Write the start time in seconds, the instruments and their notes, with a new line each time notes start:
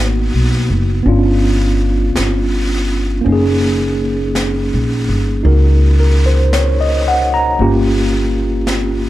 Already playing: upright bass G#1, tine electric piano A#3 B3 D#4 F#4
0.34 upright bass B1
0.70 upright bass F#1
1.03 upright bass G1, tine electric piano B3 C#4 D4, brush sweep
1.08 tine electric piano F4
2.15 upright bass G1, brush sweep, snare, hi-hat pedal
3.21 tine electric piano A#3 C#4
3.26 upright bass F#1, tine electric piano D#4, brush sweep
3.32 tine electric piano G#4
4.35 brush sweep, snare, hi-hat pedal
4.74 upright bass A#1
5.08 upright bass G1
5.43 upright bass C#2, tine electric piano D#4 F#4 A#4, brush sweep
6.00 tine electric piano A#4
6.26 tine electric piano C5
6.53 tine electric piano C#5, brush sweep, snare, hi-hat pedal
6.81 tine electric piano D#5
7.08 tine electric piano F#5
7.34 tine electric piano A#5
7.59 upright bass G1, tine electric piano A#3 C#4 F4 G4, brush sweep
8.67 brush sweep, snare, hi-hat pedal